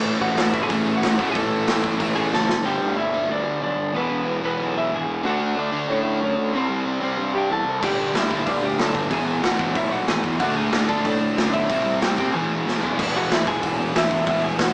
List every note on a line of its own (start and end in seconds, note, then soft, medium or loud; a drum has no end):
0.00 0.68 A2 medium
0.00 1.16 A2 loud
0.00 0.69 E3 loud
0.00 1.18 E3 loud
0.00 0.70 A3 loud
0.00 1.19 A3 loud
0.04 0.19 A1 loud
0.20 0.35 A1 loud
0.20 0.51 F#4 medium
0.20 0.52 F#5 loud
0.35 0.52 A1 loud
0.35 snare loud
0.35 open hi-hat medium
0.53 0.69 A1 medium
0.53 0.61 E4 medium
0.53 0.62 E5 medium
0.53 kick medium
0.62 0.92 G#4 medium
0.62 0.96 G#5 loud
0.69 1.01 A1 loud
0.69 0.85 A2 medium
0.69 0.86 E3 loud
0.69 0.86 E3 medium
0.69 0.83 A3 medium
0.69 0.84 A3 loud
0.69 kick loud
0.69 open hi-hat medium
0.84 1.16 A2 medium
0.84 1.18 E3 medium
0.84 1.17 A3 medium
0.89 1.16 A2 medium
0.95 1.25 F#4 medium
0.95 1.29 F#5 medium
1.02 1.18 A1 loud
1.02 snare loud
1.02 open hi-hat medium
1.17 1.34 A1 medium
1.17 1.97 A2 medium
1.17 2.47 A2 medium
1.17 1.99 E3 loud
1.17 2.48 E3 loud
1.17 2.49 A3 loud
1.17 kick medium
1.22 2.00 A3 loud
1.29 1.36 G#4 medium
1.29 1.37 G#5 medium
1.35 1.66 A1 medium
1.35 2.29 A4 medium
1.35 2.33 A5 loud
1.35 kick loud
1.35 open hi-hat medium
1.67 1.98 A1 medium
1.67 snare loud
1.67 open hi-hat medium
1.84 kick medium
1.98 2.15 A1 medium
1.98 2.14 A2 medium
1.98 2.15 E3 loud
1.98 2.15 E3 medium
1.98 2.14 A3 medium
1.98 2.13 A3 loud
1.98 kick loud
1.98 open hi-hat medium
2.14 2.31 A1 medium
2.14 2.49 A2 medium
2.14 2.48 E3 medium
2.14 2.47 A3 medium
2.14 2.31 G#4 medium
2.14 2.32 G#5 medium
2.32 2.63 F#1 loud
2.32 2.63 A4 medium
2.32 2.65 A5 medium
2.32 snare medium
2.49 snare medium
2.63 2.79 G1 medium
2.63 3.11 G2 loud
2.63 3.93 G2 medium
2.63 3.12 D3 medium
2.63 3.94 D3 medium
2.63 3.11 G3 loud
2.63 3.95 G3 medium
2.63 2.96 G4 medium
2.63 2.96 G5 medium
2.81 2.95 G1 medium
2.96 3.11 G1 medium
2.96 3.27 E4 medium
2.96 3.31 E5 medium
3.12 3.27 G1 medium
3.12 3.93 G2 medium
3.12 3.94 D3 medium
3.12 3.93 G3 medium
3.29 3.43 D2 medium
3.29 3.60 D4 medium
3.29 3.61 D5 medium
3.46 3.60 D2 medium
3.62 3.76 B1 loud
3.62 3.92 D4 medium
3.62 3.93 D5 medium
3.78 3.92 G1 medium
3.93 4.08 E1 medium
3.93 5.22 E2 medium
3.93 4.42 E2 medium
3.93 4.43 B2 loud
3.93 5.23 B2 loud
3.93 4.41 E3 loud
3.93 5.24 E3 loud
3.93 4.40 B3 medium
3.93 4.41 B4 medium
4.09 4.24 E1 medium
4.26 4.40 E1 medium
4.42 4.57 E1 medium
4.42 5.25 E2 medium
4.42 5.23 B2 medium
4.42 5.23 E3 medium
4.42 4.74 B3 medium
4.42 4.78 B4 medium
4.59 4.73 B1 medium
4.75 4.89 B1 medium
4.75 4.91 E4 medium
4.75 4.93 E5 medium
4.91 5.06 G#1 medium
4.91 5.23 G#4 medium
4.96 5.27 G#5 medium
5.08 5.22 E1 medium
5.23 5.38 D2 medium
5.23 5.71 D3 loud
5.23 6.52 D3 loud
5.23 5.72 A3 medium
5.23 6.53 A3 loud
5.23 5.70 D4 loud
5.23 5.55 F#4 medium
5.23 5.59 F#5 loud
5.27 6.54 D4 loud
5.40 5.54 D2 medium
5.56 5.71 D2 medium
5.56 5.87 D4 medium
5.56 5.88 D5 medium
5.71 5.86 D2 medium
5.71 6.53 D3 medium
5.71 6.53 A3 medium
5.71 6.52 D4 medium
5.88 6.03 A2 medium
5.88 6.20 C#4 medium
5.88 6.23 C#5 loud
6.04 6.19 A2 medium
6.21 6.35 F#2 medium
6.21 6.52 C#4 medium
6.21 6.53 C#5 medium
6.37 6.51 D2 medium
6.52 6.68 C2 medium
6.52 7.81 C3 loud
6.52 7.01 C3 medium
6.52 7.02 G3 loud
6.52 7.82 G3 loud
6.52 7.00 C4 medium
6.52 6.99 C4 loud
6.57 7.83 C4 loud
6.57 7.03 C5 medium
6.69 6.84 C2 medium
6.86 7.00 C2 medium
7.00 7.16 C2 medium
7.00 7.82 C3 medium
7.00 7.82 G3 medium
7.00 7.81 C4 medium
7.00 7.33 C4 medium
7.00 7.36 C5 medium
7.17 7.32 G2 medium
7.34 7.48 G2 medium
7.34 7.50 G4 medium
7.34 7.51 G5 medium
7.50 7.64 E2 medium
7.50 7.81 A4 medium
7.50 7.85 A5 medium
7.65 7.80 C2 medium
7.80 7.97 G1 medium
7.80 9.09 G2 medium
7.80 8.14 G2 medium
7.80 9.10 D3 medium
7.80 8.14 D3 medium
7.80 8.15 G3 medium
7.80 9.11 G3 loud
7.80 8.13 G4 medium
7.80 kick loud
7.80 crash loud
7.84 8.14 G5 medium
7.97 8.12 G1 medium
8.14 8.28 G1 medium
8.14 8.31 G2 medium
8.14 8.30 D3 medium
8.14 8.30 G3 medium
8.14 8.45 E4 medium
8.14 8.49 E5 medium
8.14 snare loud
8.14 open hi-hat medium
8.31 8.45 G1 medium
8.31 8.46 G2 medium
8.31 8.46 D3 medium
8.31 8.47 G3 medium
8.31 kick medium
8.47 8.61 D2 medium
8.47 8.78 G2 loud
8.47 8.79 D3 medium
8.47 8.80 G3 loud
8.47 8.62 D4 medium
8.47 8.65 D5 medium
8.47 kick loud
8.47 open hi-hat medium
8.63 8.77 D2 medium
8.63 8.78 G4 medium
8.63 8.81 G5 medium
8.79 8.93 B1 medium
8.79 8.95 G2 medium
8.79 8.95 D3 medium
8.79 8.94 G3 loud
8.79 9.10 A4 medium
8.79 9.13 A5 medium
8.79 snare loud
8.79 open hi-hat medium
8.95 9.09 G1 medium
8.95 9.10 G2 medium
8.95 9.11 D3 medium
8.95 9.10 G3 medium
8.95 kick medium
9.09 9.25 E1 loud
9.09 10.38 E2 medium
9.09 9.42 E2 medium
9.09 10.39 B2 loud
9.09 9.42 B2 medium
9.09 9.43 E3 loud
9.09 10.40 E3 loud
9.09 9.41 G#4 medium
9.09 9.44 G#5 loud
9.09 kick loud
9.09 open hi-hat medium
9.26 9.41 E1 medium
9.43 9.57 E1 medium
9.43 9.60 E2 medium
9.43 9.59 B2 loud
9.43 9.58 E3 medium
9.43 9.74 F#4 medium
9.43 9.77 F#5 medium
9.43 snare loud
9.43 open hi-hat medium
9.59 9.74 E1 medium
9.59 9.74 E2 medium
9.59 9.75 B2 medium
9.59 9.76 E3 loud
9.59 kick medium
9.74 9.90 B1 medium
9.74 10.07 E2 medium
9.74 10.08 B2 loud
9.74 10.08 E3 loud
9.74 9.90 E4 medium
9.74 9.93 E5 medium
9.74 kick loud
9.74 open hi-hat medium
9.90 10.06 B1 medium
9.90 10.06 F#4 medium
9.90 10.08 F#5 medium
10.08 10.22 G#1 medium
10.08 10.24 E2 medium
10.08 10.23 B2 medium
10.08 10.22 E3 loud
10.08 10.38 G#4 medium
10.08 10.40 G#5 medium
10.08 snare loud
10.08 open hi-hat medium
10.23 10.38 E2 medium
10.23 10.40 E2 medium
10.23 10.39 B2 medium
10.23 10.39 E3 loud
10.23 kick medium
10.39 10.54 D2 medium
10.39 11.67 D3 medium
10.39 10.71 D3 medium
10.39 10.72 A3 loud
10.39 11.69 A3 loud
10.39 10.72 D4 loud
10.39 11.70 D4 loud
10.39 10.55 F#4 medium
10.39 10.56 F#5 medium
10.39 kick loud
10.39 open hi-hat medium
10.54 10.70 D2 medium
10.54 10.86 G#4 medium
10.54 10.90 G#5 loud
10.72 10.86 D2 medium
10.72 10.89 D3 medium
10.72 10.89 A3 medium
10.72 10.88 D4 loud
10.72 snare loud
10.72 open hi-hat medium
10.87 11.03 D2 medium
10.87 11.04 D3 medium
10.87 11.05 A3 medium
10.87 11.05 D4 medium
10.87 11.03 A4 medium
10.87 11.06 A5 medium
10.87 kick medium
11.05 11.19 A2 medium
11.05 11.35 D3 loud
11.05 11.37 A3 loud
11.05 11.50 D4 medium
11.05 11.37 D4 loud
11.05 11.56 D5 medium
11.05 kick loud
11.05 open hi-hat medium
11.20 11.35 A2 medium
11.36 11.51 F#2 loud
11.36 11.55 D3 medium
11.36 11.54 A3 medium
11.36 11.53 D4 medium
11.36 snare loud
11.36 open hi-hat medium
11.53 11.68 B1 medium
11.53 11.69 D3 medium
11.53 11.69 A3 medium
11.53 11.69 D4 loud
11.53 11.98 E4 medium
11.53 12.02 E5 loud
11.53 kick medium
11.68 11.84 C2 medium
11.68 12.32 C3 medium
11.68 12.01 C3 medium
11.68 12.33 G3 loud
11.68 12.02 G3 medium
11.68 12.03 C4 loud
11.68 12.34 C4 loud
11.68 kick loud
11.68 open hi-hat medium
11.84 11.99 C2 medium
12.01 12.15 C2 medium
12.01 12.18 C3 medium
12.01 12.18 G3 loud
12.01 12.17 C4 loud
12.01 12.17 G4 medium
12.01 12.18 G5 medium
12.01 snare loud
12.01 open hi-hat medium
12.18 12.32 C2 medium
12.18 12.34 C3 medium
12.18 12.34 G3 medium
12.18 12.33 C4 loud
12.18 12.32 G4 medium
12.18 12.35 G5 medium
12.18 kick medium
12.33 12.96 E2 loud
12.33 12.65 E2 loud
12.33 12.98 B2 loud
12.33 12.66 B2 loud
12.33 12.66 E3 loud
12.33 12.99 E3 loud
12.33 12.78 G#4 medium
12.33 12.78 G#5 medium
12.66 12.83 E2 medium
12.66 12.82 B2 medium
12.66 12.81 E3 medium
12.66 snare medium
12.83 12.96 E2 medium
12.83 12.98 B2 medium
12.83 12.97 E3 loud
12.83 floor tom medium
12.97 13.13 E1 medium
12.97 13.77 E2 loud
12.97 14.25 E2 medium
12.97 14.26 B2 loud
12.97 13.78 B2 loud
12.97 13.77 E3 loud
12.97 kick loud
12.97 crash loud
13.01 14.29 E3 loud
13.14 13.29 E1 medium
13.14 13.30 F#4 medium
13.14 13.32 F#5 medium
13.30 13.45 E1 loud
13.30 13.46 E4 medium
13.30 13.47 E5 loud
13.30 snare loud
13.30 open hi-hat medium
13.47 13.62 E1 medium
13.47 13.92 G#4 medium
13.47 13.96 G#5 loud
13.47 kick medium
13.63 13.93 E1 loud
13.63 kick loud
13.63 open hi-hat medium
13.77 13.93 B2 medium
13.77 13.96 E3 medium
13.81 13.91 E2 medium
13.92 14.10 E1 loud
13.92 14.24 E2 medium
13.92 14.25 B2 medium
13.92 14.29 E3 medium
13.92 open hi-hat medium
13.96 14.26 E4 medium
13.96 14.26 E5 medium
13.96 snare loud
14.11 14.26 E1 medium
14.11 kick medium
14.25 14.57 E1 medium
14.25 14.73 E2 loud
14.25 14.73 E2 medium
14.25 14.73 B2 loud
14.25 14.42 E4 medium
14.25 kick loud
14.25 open hi-hat medium
14.29 14.73 E3 loud
14.29 14.45 E5 medium
14.44 14.58 G#4 medium
14.44 14.59 G#5 loud
14.58 14.73 E1 medium
14.58 14.73 F#4 medium
14.58 14.73 F#5 medium
14.58 snare loud
14.58 open hi-hat medium